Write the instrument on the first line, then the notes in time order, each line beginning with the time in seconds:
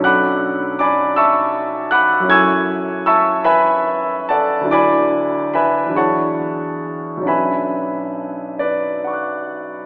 grand piano
Already playing: B1 F#3
0.00 C#4 D4 A4 F#6
0.05 F#5 B5 D6
0.79 D5 G#5 B5 D6
1.16 E5 A5 C#6 E6
1.91 F#5 B5 D6 F#6
2.20 F#2 F#3
2.24 C#4 E4 A4
2.30 G#5 C#6 E6 G#6
3.06 E5 A5 C#6 E6
3.44 B4 E5 G#5 B5
4.29 A4 D5 F#5 A5
4.61 D2 F#3
4.65 D4 E4
4.70 A4 D5 G#5 B5 D6
5.54 B4 E5 G#5 B5
5.86 E2 F#3
5.91 D4 E4
5.95 G#4 C#5 F#5 A5 C#6
7.17 B1 F#3
7.21 C#4 D4
7.26 F#4 B4 E5 G#5 B5
8.59 B4 D5
9.04 F#5 C#6
9.10 D6 F#6